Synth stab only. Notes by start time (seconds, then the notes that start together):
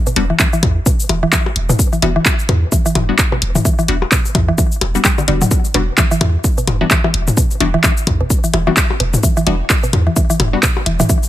0.16 G3 B3 D4 F#4
2.02 G3 B3 D4 F#4
3.09 G3 B3 D4 F#4
3.88 G3 B3 D4 F#4
4.95 G3 B3 D4 F#4
5.28 G3 B3 D4 F#4
5.74 G3 B3 D4 F#4
6.81 G3 B3 D4 F#4
7.60 G3 B3 D4 F#4
8.67 G3 B3 D4 F#4
9.47 G3 B3 D4 F#4
10.53 G3 B3 D4 F#4